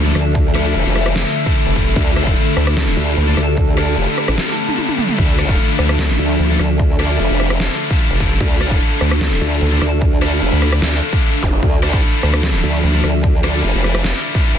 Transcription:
Already playing: D2 D3 F3 A3 D4 A4 E5
0.05 D4 E4 F4 A4
0.15 D2, cross-stick, open hi-hat
0.35 kick, closed hi-hat
0.55 D4 E4 F4 A4, cross-stick
0.66 closed hi-hat
0.75 F1, closed hi-hat
0.86 F1
0.96 cross-stick
1.06 cross-stick
1.15 D4 E4 F4 A4, snare, closed hi-hat
1.36 closed hi-hat
1.46 kick, closed hi-hat
1.56 closed hi-hat
1.66 F1
1.76 kick, open hi-hat
1.96 D2 G4, kick, closed hi-hat
2.16 D4 E4 F4 A4, cross-stick
2.21 A5
2.27 kick, closed hi-hat
2.37 closed hi-hat
2.57 D2, cross-stick
2.67 cross-stick
2.77 snare, closed hi-hat
2.97 D2, closed hi-hat
3.07 closed hi-hat
3.17 D2, closed hi-hat
3.27 D4 E4 F4 A4
3.37 D2, cross-stick, open hi-hat
3.57 kick, closed hi-hat
3.77 D4 E4 F4 A4, cross-stick
3.88 closed hi-hat
3.98 F1, closed hi-hat
4.18 cross-stick
4.28 A1, cross-stick
4.38 D4 E4 F4 A4, snare, closed hi-hat, high tom
4.48 high tom
4.58 closed hi-hat
4.68 closed hi-hat, mid tom
4.78 closed hi-hat, mid tom
4.89 mid tom
4.98 mid tom, open hi-hat
5.09 mid tom
5.18 D2 F3 D4, kick, closed hi-hat, crash
5.38 D4 E4 F4 A4, cross-stick
5.43 E5
5.49 kick, closed hi-hat
5.59 closed hi-hat
5.79 D2, cross-stick
5.89 cross-stick
5.99 snare, closed hi-hat
6.19 D2, closed hi-hat
6.30 closed hi-hat
6.39 D2, closed hi-hat
6.49 D4 E4 F4 A4
6.59 D2, cross-stick, open hi-hat
6.79 kick, closed hi-hat
6.99 D4 E4 F4 A4, cross-stick
7.10 closed hi-hat
7.20 F1, closed hi-hat
7.30 F1
7.40 cross-stick
7.50 cross-stick
7.60 D4 E4 F4 A4, snare, closed hi-hat
7.80 closed hi-hat
7.91 kick, closed hi-hat
8.00 closed hi-hat
8.11 F1
8.20 kick, open hi-hat
8.41 D2 A4, kick, closed hi-hat
8.60 D4 E4 F4 A4, cross-stick
8.71 kick, closed hi-hat
8.81 closed hi-hat
9.01 D2, cross-stick
9.11 cross-stick
9.21 snare, closed hi-hat
9.41 D2, closed hi-hat
9.52 closed hi-hat
9.61 D2, closed hi-hat
9.71 D4 E4 F4 A4
9.81 D2, cross-stick, open hi-hat
10.02 kick, closed hi-hat
10.21 D4 E4 F4 A4, cross-stick
10.32 closed hi-hat
10.42 F1, closed hi-hat
10.52 D2
10.62 cross-stick
10.72 cross-stick
10.82 D2 D4 E4 F4 A4, snare, closed hi-hat
11.02 closed hi-hat
11.13 kick, closed hi-hat
11.22 closed hi-hat
11.43 F1, kick, open hi-hat, zap
11.63 D2 F3, kick, closed hi-hat
11.82 D4 E4 F4 A4, cross-stick
11.88 E5
11.93 kick, closed hi-hat
12.03 closed hi-hat
12.23 D2, cross-stick
12.34 cross-stick
12.43 snare, closed hi-hat
12.63 D2, closed hi-hat
12.74 closed hi-hat
12.84 D2, closed hi-hat
12.94 D4 E4 F4 A4
13.04 D2, cross-stick, open hi-hat
13.24 kick, closed hi-hat
13.44 D4 E4 F4 A4, cross-stick
13.54 closed hi-hat
13.64 F1, closed hi-hat
13.74 F1
13.84 cross-stick
13.95 cross-stick
14.04 D4 E4 F4 A4, snare, closed hi-hat
14.25 closed hi-hat
14.35 kick, closed hi-hat
14.45 closed hi-hat
14.55 F1

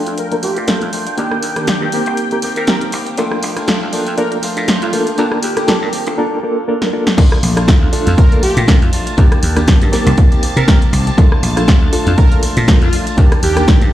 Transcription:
Already playing: F3 A3 D4 F4 A4 G5
0.07 F2, closed hi-hat
0.18 A#4, closed hi-hat
0.32 A#3 D4 F4 A4 A#4, closed hi-hat
0.42 F3 A3 D4 F4 G4, open hi-hat
0.57 A#2 A3 D4 F4, closed hi-hat
0.67 F3 A3 A#3 D4 F4 A4 A#4, snare, closed hi-hat
0.81 F2, closed hi-hat
0.92 F3 A3 D4 F4, open hi-hat
1.06 A3 D4 F4, closed hi-hat
1.17 D#2 D#3 A#3 D4 D#4 G4 A#4, closed hi-hat
1.31 cross-stick
1.43 D#2, open hi-hat
1.56 D#3 A#3 D4 G4 A#4, cross-stick, closed hi-hat
1.67 D#3 A#3 D4 G4, snare, closed hi-hat
1.81 G2
1.92 D#3 A#3 C4 D#4 G4 A#4, open hi-hat
2.06 C2, closed hi-hat
2.17 closed hi-hat
2.31 A#3 C4 D#4 G4 A#4, closed hi-hat
2.42 D#3 A#3 C4 G4, open hi-hat
2.56 C3 A#4, closed hi-hat
2.67 D#3 A#3 C4 D#4 G4 A#4, snare, closed hi-hat
2.81 closed hi-hat
2.92 C2 D#3 A#3 C4 G4, open hi-hat
3.06 A#3 C4 G4, closed hi-hat
3.17 A#1 F3 A3 A#3 D4 F4 A4 A#4, closed hi-hat
3.31 cross-stick
3.43 A#1, open hi-hat
3.57 A3 D4 F4 A4, cross-stick, closed hi-hat
3.68 F3 A3 D4 F4, snare, closed hi-hat
3.82 D2 A3 D4 F4
3.93 F3 A3 A#3 D4 F4 A4 A#4, open hi-hat
4.07 F2, closed hi-hat
4.17 A#3 D4 F4 A4 A#4, closed hi-hat
4.32 closed hi-hat
4.42 F3 A3 D4 F4, open hi-hat
4.57 A#2 D4 F4 A4, closed hi-hat
4.68 F3 A3 D4 F4, snare, closed hi-hat
4.82 F2 F4, closed hi-hat
4.92 F3 A3 A#3 D4 F4 A4 A#4, open hi-hat
5.06 A3 D4 F4, closed hi-hat
5.18 D#3 A#3 D4 F4 G4 A4 A#4, closed hi-hat
5.32 muted slap bass stroke, cross-stick
5.43 D#2 G4, open hi-hat
5.57 A#3 D4 F4 G4 A4 A#4, cross-stick, closed hi-hat
5.67 D#3 A#3 D4 F4 G4 A4 A#4, snare, closed hi-hat
5.82 G2 A#3 D4 G4
5.92 D#3 A#3 C4 G4, open hi-hat
6.07 C2 A#3 D4 F4 A4 A#4, closed hi-hat
6.18 A#3 D4 F4 A4 A#4
6.43 A#3 D4 F4 A4 A#4
6.68 A#3 D4 F4 A4 A#4
6.82 snare
6.93 A#3 D4 F4 A4 A#4
7.07 snare
7.17 A#1 F3 A3 A#3 D4 F4 A4 A#4 A5, kick, closed hi-hat, crash
7.32 cross-stick
7.43 A#1, open hi-hat
7.56 A3 D4 F4 A4, cross-stick, closed hi-hat
7.67 F3 D4 F4, kick, snare, closed hi-hat
7.82 D2
7.92 F3 A3 D4 F4 A4, muted slap bass stroke, open hi-hat
8.06 F2 A3 D4 F4, closed hi-hat
8.18 A#4, kick, closed hi-hat
8.31 A3 A#3 D4 F4 A4 A#4, closed hi-hat
8.42 F3 A3 D4 F4 G4, open hi-hat
8.57 A#2, closed hi-hat
8.68 A3 A#3 D4 F4 A4 A#4, kick, snare, closed hi-hat
8.82 F2, closed hi-hat
8.92 F3 A3 D4 F4, open hi-hat
9.06 A3 D4 F4, closed hi-hat
9.17 D#2 D#3 A#3 D4 D#4 G4 A#4, kick, closed hi-hat
9.32 muted slap bass stroke, cross-stick, closed hi-hat
9.43 D#2, open hi-hat
9.56 D#3 A#3 D4 G4 A#4, cross-stick, closed hi-hat
9.68 D#3 A#3 D4 G4, kick, snare, closed hi-hat
9.82 G2, closed hi-hat
9.92 D#3 A#3 C4 D#4 G4 A#4, muted slap bass stroke, snare, open hi-hat
10.06 C2 A#3 C4 G4, closed hi-hat
10.18 kick, closed hi-hat
10.32 A#3 C4 D#4 G4 A#4, closed hi-hat
10.42 D#3 A#3 C4 G4, open hi-hat
10.56 C3 A#4, closed hi-hat
10.67 D#3 A#3 C4 D#4 G4 A#4, kick, snare, closed hi-hat
10.82 closed hi-hat
10.93 C2 D#3 A#3 C4 G4, open hi-hat
11.07 A#3 C4 G4, closed hi-hat
11.17 A#1 F3 A3 A#3 D4 F4 A4 A#4, kick, closed hi-hat
11.32 cross-stick
11.43 A#1, open hi-hat
11.56 A3 D4 F4 A4, cross-stick, closed hi-hat
11.68 F3 A3 D4, kick, snare, closed hi-hat
11.82 D2
11.92 F3 A3 D4 F4 A4, muted slap bass stroke, open hi-hat
12.06 F2 A3 D4 F4, closed hi-hat
12.17 A#4, kick, closed hi-hat
12.31 A3 A#3 D4 F4 A4 A#4, closed hi-hat
12.43 F3 A3 D4 F4, open hi-hat
12.57 A#2, closed hi-hat
12.67 F3 A3 A#3 D4 F4 A4 A#4, kick, snare, closed hi-hat
12.82 F2 F4, closed hi-hat
12.93 F3 A3 D4 F4, open hi-hat
13.06 A3 D4 F4, closed hi-hat
13.17 D#2 D#3 A#3 D4 D#4 G4 A#4, kick, closed hi-hat
13.32 muted slap bass stroke, cross-stick, closed hi-hat
13.43 D#2 G4, open hi-hat
13.56 D#3 A#3 D4 G4 A#4, cross-stick, closed hi-hat
13.68 D#3 A#3 D4, kick, snare, closed hi-hat
13.81 G2, closed hi-hat

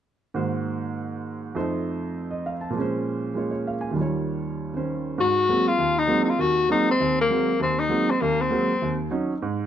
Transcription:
0.34 G#2 D#3 A#3 F#4 C5
1.55 F2 F3 A3 D#4 C5
2.31 D#5
2.46 F5
2.61 A5
2.70 A#2 F3
2.76 G#3 C#4
2.81 C5
3.34 G#3 A#3 F4 C#5
3.51 C#5
3.67 F5
3.81 G#5
3.91 D#2 D#3
3.96 G3 F4
4.01 C#5
4.74 D#3 C#4 C5
5.18 G#2 F#4
5.49 F#3 G#3 A#3 C4
5.68 F4
5.78 D#2
5.99 D#4
6.07 F#3 G#3 A#3 C4
6.24 D#4
6.29 F4
6.39 D#2 D#3 F#4
6.69 F#3 G#3 A#3 C4 D#4
6.91 C4
7.00 D#2
7.21 A#3
7.30 F#3 G#3 A#3 C4
7.59 D#2 C4
7.80 D#4
7.89 F#3 G#3 A#3 C4
8.10 C4
8.21 D#2 A#3
8.41 C4
8.50 F#3 G#3 A#3 C4
8.82 D#2
9.10 F#3 C#4 D#4
9.42 G#2

